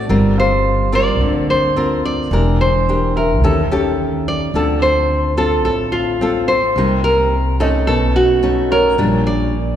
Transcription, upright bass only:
0.09 1.21 G1 medium
1.21 2.28 D2 medium
2.31 3.42 E1 medium
3.42 4.50 D#2 medium
4.54 5.65 D2 medium
5.65 6.72 A1 medium
6.76 7.87 C2 medium
7.87 8.95 B1 medium
8.99 9.76 A#1 medium

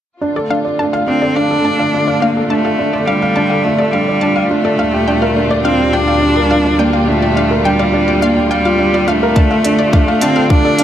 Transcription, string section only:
0.22 4.75 D3 medium
0.22 4.75 A3 medium
0.22 10.84 F4 medium
4.80 9.33 D2 medium
4.80 9.33 A#2 medium
4.80 9.33 G3 medium
9.35 10.84 D3 medium
9.35 10.84 A3 medium

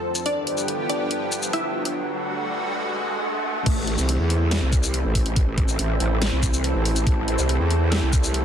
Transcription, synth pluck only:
0.00 0.17 C4 medium
0.00 0.17 C5 medium
0.26 0.81 D4 medium
0.26 0.81 D5 loud
0.90 1.45 D4 medium
0.90 1.45 D5 medium
1.53 1.96 E4 medium
1.53 1.96 E5 medium

